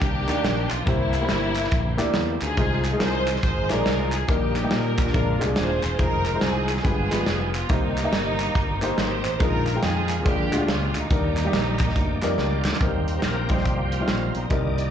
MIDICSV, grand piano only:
0, 0, Header, 1, 2, 480
1, 0, Start_track
1, 0, Key_signature, -3, "major"
1, 0, Tempo, 426136
1, 982, Time_signature, 4, 2, 24, 8
1, 16790, End_track
2, 0, Start_track
2, 0, Title_t, "Grand piano"
2, 0, Program_c, 0, 0
2, 308, Note_on_c, 0, 58, 70
2, 317, Note_on_c, 0, 51, 63
2, 321, Note_on_c, 0, 67, 70
2, 329, Note_on_c, 0, 74, 84
2, 702, Note_off_c, 0, 58, 0
2, 706, Note_off_c, 0, 51, 0
2, 708, Note_off_c, 0, 67, 0
2, 712, Note_off_c, 0, 74, 0
2, 969, Note_on_c, 0, 58, 68
2, 975, Note_on_c, 0, 64, 60
2, 983, Note_on_c, 0, 48, 62
2, 987, Note_on_c, 0, 67, 67
2, 991, Note_on_c, 0, 72, 74
2, 1233, Note_off_c, 0, 58, 0
2, 1236, Note_off_c, 0, 64, 0
2, 1242, Note_off_c, 0, 67, 0
2, 1243, Note_off_c, 0, 72, 0
2, 1366, Note_on_c, 0, 58, 75
2, 1371, Note_on_c, 0, 64, 69
2, 1377, Note_on_c, 0, 67, 71
2, 1383, Note_on_c, 0, 72, 80
2, 1722, Note_off_c, 0, 48, 0
2, 1844, Note_off_c, 0, 58, 0
2, 1847, Note_off_c, 0, 64, 0
2, 1850, Note_off_c, 0, 67, 0
2, 1853, Note_off_c, 0, 72, 0
2, 2225, Note_on_c, 0, 58, 89
2, 2230, Note_on_c, 0, 64, 81
2, 2233, Note_on_c, 0, 67, 84
2, 2244, Note_on_c, 0, 74, 91
2, 2620, Note_off_c, 0, 58, 0
2, 2623, Note_off_c, 0, 64, 0
2, 2624, Note_off_c, 0, 67, 0
2, 2630, Note_off_c, 0, 74, 0
2, 2897, Note_on_c, 0, 56, 71
2, 2903, Note_on_c, 0, 63, 63
2, 2906, Note_on_c, 0, 48, 64
2, 2908, Note_on_c, 0, 65, 63
2, 2917, Note_on_c, 0, 72, 83
2, 3157, Note_off_c, 0, 56, 0
2, 3160, Note_off_c, 0, 63, 0
2, 3162, Note_off_c, 0, 65, 0
2, 3167, Note_off_c, 0, 72, 0
2, 3283, Note_on_c, 0, 56, 73
2, 3287, Note_on_c, 0, 63, 68
2, 3297, Note_on_c, 0, 65, 66
2, 3303, Note_on_c, 0, 68, 70
2, 3341, Note_off_c, 0, 68, 0
2, 3362, Note_on_c, 0, 70, 88
2, 3645, Note_off_c, 0, 48, 0
2, 3764, Note_off_c, 0, 56, 0
2, 3766, Note_off_c, 0, 63, 0
2, 3771, Note_off_c, 0, 65, 0
2, 3804, Note_off_c, 0, 70, 0
2, 4154, Note_on_c, 0, 55, 55
2, 4164, Note_on_c, 0, 63, 71
2, 4168, Note_on_c, 0, 65, 69
2, 4177, Note_on_c, 0, 74, 85
2, 4204, Note_off_c, 0, 55, 0
2, 4212, Note_on_c, 0, 56, 71
2, 4551, Note_off_c, 0, 63, 0
2, 4553, Note_off_c, 0, 65, 0
2, 4558, Note_off_c, 0, 74, 0
2, 4575, Note_off_c, 0, 56, 0
2, 4820, Note_on_c, 0, 55, 69
2, 4827, Note_on_c, 0, 46, 58
2, 4828, Note_on_c, 0, 58, 62
2, 4833, Note_on_c, 0, 63, 60
2, 4838, Note_on_c, 0, 70, 81
2, 5080, Note_off_c, 0, 55, 0
2, 5085, Note_off_c, 0, 58, 0
2, 5087, Note_off_c, 0, 63, 0
2, 5090, Note_off_c, 0, 70, 0
2, 5213, Note_on_c, 0, 55, 70
2, 5217, Note_on_c, 0, 58, 70
2, 5222, Note_on_c, 0, 63, 67
2, 5232, Note_on_c, 0, 67, 77
2, 5568, Note_off_c, 0, 46, 0
2, 5691, Note_off_c, 0, 55, 0
2, 5693, Note_off_c, 0, 58, 0
2, 5696, Note_off_c, 0, 63, 0
2, 5701, Note_off_c, 0, 67, 0
2, 5781, Note_on_c, 0, 56, 69
2, 5794, Note_on_c, 0, 65, 62
2, 5795, Note_on_c, 0, 46, 54
2, 5795, Note_on_c, 0, 62, 65
2, 5804, Note_on_c, 0, 70, 75
2, 6029, Note_off_c, 0, 56, 0
2, 6035, Note_off_c, 0, 65, 0
2, 6036, Note_off_c, 0, 62, 0
2, 6041, Note_off_c, 0, 70, 0
2, 6076, Note_on_c, 0, 56, 71
2, 6087, Note_on_c, 0, 62, 68
2, 6090, Note_on_c, 0, 65, 67
2, 6096, Note_on_c, 0, 67, 64
2, 6137, Note_off_c, 0, 67, 0
2, 6157, Note_on_c, 0, 68, 80
2, 6470, Note_off_c, 0, 56, 0
2, 6475, Note_off_c, 0, 62, 0
2, 6477, Note_off_c, 0, 65, 0
2, 6510, Note_off_c, 0, 68, 0
2, 6533, Note_off_c, 0, 46, 0
2, 6743, Note_on_c, 0, 56, 73
2, 6751, Note_on_c, 0, 63, 63
2, 6754, Note_on_c, 0, 65, 63
2, 6762, Note_on_c, 0, 72, 79
2, 7004, Note_off_c, 0, 56, 0
2, 7008, Note_off_c, 0, 63, 0
2, 7010, Note_off_c, 0, 65, 0
2, 7014, Note_off_c, 0, 72, 0
2, 7140, Note_on_c, 0, 56, 69
2, 7143, Note_on_c, 0, 63, 59
2, 7153, Note_on_c, 0, 65, 69
2, 7155, Note_on_c, 0, 72, 79
2, 7617, Note_off_c, 0, 56, 0
2, 7618, Note_off_c, 0, 63, 0
2, 7623, Note_off_c, 0, 65, 0
2, 7624, Note_off_c, 0, 72, 0
2, 7700, Note_on_c, 0, 56, 74
2, 7707, Note_on_c, 0, 65, 58
2, 7709, Note_on_c, 0, 43, 56
2, 7710, Note_on_c, 0, 67, 66
2, 7718, Note_on_c, 0, 71, 78
2, 7950, Note_off_c, 0, 56, 0
2, 7954, Note_off_c, 0, 65, 0
2, 7955, Note_off_c, 0, 67, 0
2, 7959, Note_off_c, 0, 71, 0
2, 8007, Note_on_c, 0, 56, 76
2, 8016, Note_on_c, 0, 65, 62
2, 8021, Note_on_c, 0, 55, 65
2, 8029, Note_on_c, 0, 71, 89
2, 8397, Note_off_c, 0, 56, 0
2, 8401, Note_off_c, 0, 65, 0
2, 8404, Note_off_c, 0, 55, 0
2, 8408, Note_off_c, 0, 71, 0
2, 8451, Note_off_c, 0, 43, 0
2, 8662, Note_on_c, 0, 58, 72
2, 8666, Note_on_c, 0, 63, 62
2, 8671, Note_on_c, 0, 48, 61
2, 8672, Note_on_c, 0, 67, 61
2, 8678, Note_on_c, 0, 72, 76
2, 8925, Note_off_c, 0, 58, 0
2, 8927, Note_off_c, 0, 63, 0
2, 8930, Note_off_c, 0, 67, 0
2, 8933, Note_off_c, 0, 72, 0
2, 9046, Note_on_c, 0, 58, 75
2, 9056, Note_on_c, 0, 63, 62
2, 9061, Note_on_c, 0, 67, 72
2, 9069, Note_on_c, 0, 75, 82
2, 9413, Note_off_c, 0, 48, 0
2, 9530, Note_off_c, 0, 58, 0
2, 9535, Note_off_c, 0, 63, 0
2, 9537, Note_off_c, 0, 67, 0
2, 9542, Note_off_c, 0, 75, 0
2, 9930, Note_on_c, 0, 58, 89
2, 9935, Note_on_c, 0, 63, 77
2, 9943, Note_on_c, 0, 67, 80
2, 9950, Note_on_c, 0, 72, 99
2, 10318, Note_off_c, 0, 58, 0
2, 10321, Note_off_c, 0, 63, 0
2, 10324, Note_off_c, 0, 67, 0
2, 10328, Note_off_c, 0, 72, 0
2, 10583, Note_on_c, 0, 56, 72
2, 10587, Note_on_c, 0, 46, 61
2, 10591, Note_on_c, 0, 63, 71
2, 10596, Note_on_c, 0, 65, 67
2, 10598, Note_on_c, 0, 70, 77
2, 10845, Note_off_c, 0, 56, 0
2, 10848, Note_off_c, 0, 63, 0
2, 10851, Note_off_c, 0, 65, 0
2, 10852, Note_off_c, 0, 70, 0
2, 10977, Note_on_c, 0, 56, 71
2, 10984, Note_on_c, 0, 63, 67
2, 10987, Note_on_c, 0, 65, 67
2, 10996, Note_on_c, 0, 79, 84
2, 11328, Note_off_c, 0, 46, 0
2, 11454, Note_off_c, 0, 56, 0
2, 11458, Note_off_c, 0, 63, 0
2, 11459, Note_off_c, 0, 65, 0
2, 11464, Note_off_c, 0, 79, 0
2, 11547, Note_on_c, 0, 56, 72
2, 11551, Note_on_c, 0, 62, 68
2, 11553, Note_on_c, 0, 46, 61
2, 11561, Note_on_c, 0, 65, 73
2, 11565, Note_on_c, 0, 70, 79
2, 11793, Note_off_c, 0, 56, 0
2, 11795, Note_off_c, 0, 62, 0
2, 11800, Note_off_c, 0, 65, 0
2, 11802, Note_off_c, 0, 70, 0
2, 11846, Note_on_c, 0, 56, 80
2, 11858, Note_on_c, 0, 62, 68
2, 11865, Note_on_c, 0, 65, 71
2, 11870, Note_on_c, 0, 66, 69
2, 11905, Note_off_c, 0, 66, 0
2, 11929, Note_on_c, 0, 67, 89
2, 12234, Note_off_c, 0, 56, 0
2, 12239, Note_off_c, 0, 62, 0
2, 12243, Note_off_c, 0, 65, 0
2, 12275, Note_off_c, 0, 67, 0
2, 12290, Note_off_c, 0, 46, 0
2, 12510, Note_on_c, 0, 55, 67
2, 12518, Note_on_c, 0, 62, 64
2, 12520, Note_on_c, 0, 51, 59
2, 12525, Note_on_c, 0, 63, 63
2, 12527, Note_on_c, 0, 70, 79
2, 12766, Note_off_c, 0, 55, 0
2, 12770, Note_off_c, 0, 62, 0
2, 12773, Note_off_c, 0, 63, 0
2, 12774, Note_off_c, 0, 70, 0
2, 12895, Note_on_c, 0, 55, 88
2, 12903, Note_on_c, 0, 74, 83
2, 12912, Note_on_c, 0, 63, 77
2, 12917, Note_on_c, 0, 67, 96
2, 13252, Note_off_c, 0, 51, 0
2, 13370, Note_off_c, 0, 55, 0
2, 13375, Note_off_c, 0, 74, 0
2, 13379, Note_off_c, 0, 63, 0
2, 13381, Note_off_c, 0, 67, 0
2, 13766, Note_on_c, 0, 55, 91
2, 13773, Note_on_c, 0, 74, 85
2, 13778, Note_on_c, 0, 63, 74
2, 13786, Note_on_c, 0, 70, 104
2, 14152, Note_off_c, 0, 55, 0
2, 14155, Note_off_c, 0, 74, 0
2, 14158, Note_off_c, 0, 63, 0
2, 14161, Note_off_c, 0, 70, 0
2, 14425, Note_on_c, 0, 54, 51
2, 14435, Note_on_c, 0, 51, 54
2, 14437, Note_on_c, 0, 60, 63
2, 14439, Note_on_c, 0, 63, 63
2, 14446, Note_on_c, 0, 70, 78
2, 14485, Note_on_c, 0, 55, 67
2, 14498, Note_off_c, 0, 54, 0
2, 14855, Note_off_c, 0, 60, 0
2, 14856, Note_off_c, 0, 63, 0
2, 14859, Note_off_c, 0, 70, 0
2, 14879, Note_off_c, 0, 55, 0
2, 15168, Note_off_c, 0, 51, 0
2, 15204, Note_on_c, 0, 55, 75
2, 15208, Note_on_c, 0, 60, 62
2, 15213, Note_on_c, 0, 63, 69
2, 15223, Note_on_c, 0, 72, 78
2, 15504, Note_off_c, 0, 55, 0
2, 15506, Note_off_c, 0, 60, 0
2, 15508, Note_off_c, 0, 63, 0
2, 15513, Note_off_c, 0, 72, 0
2, 15767, Note_on_c, 0, 55, 69
2, 15774, Note_on_c, 0, 60, 60
2, 15779, Note_on_c, 0, 63, 57
2, 15788, Note_on_c, 0, 65, 73
2, 16134, Note_off_c, 0, 55, 0
2, 16137, Note_off_c, 0, 60, 0
2, 16140, Note_off_c, 0, 63, 0
2, 16145, Note_off_c, 0, 65, 0
2, 16335, Note_on_c, 0, 55, 66
2, 16336, Note_on_c, 0, 60, 63
2, 16340, Note_on_c, 0, 48, 57
2, 16345, Note_on_c, 0, 63, 59
2, 16353, Note_on_c, 0, 70, 73
2, 16763, Note_off_c, 0, 55, 0
2, 16764, Note_off_c, 0, 60, 0
2, 16769, Note_off_c, 0, 63, 0
2, 16773, Note_off_c, 0, 70, 0
2, 16790, Note_off_c, 0, 48, 0
2, 16790, End_track
0, 0, End_of_file